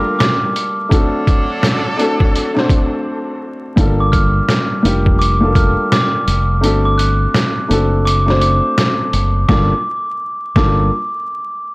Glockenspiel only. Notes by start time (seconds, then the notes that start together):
Already playing: F6
0.19 D6
4.00 D6
4.12 F6
5.19 D6
5.56 F6
5.92 D6
6.85 D6
6.98 F#6
8.05 D6
8.41 D6
9.48 D6
10.56 D6